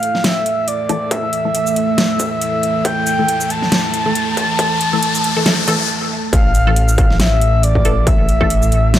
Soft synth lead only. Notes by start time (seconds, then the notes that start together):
Already playing: F5
0.24 E5
0.68 D5
1.11 E5
2.42 E5
2.85 G5
3.07 G5
3.51 A5
6.33 F5
7.20 E5
7.63 D5
8.07 E5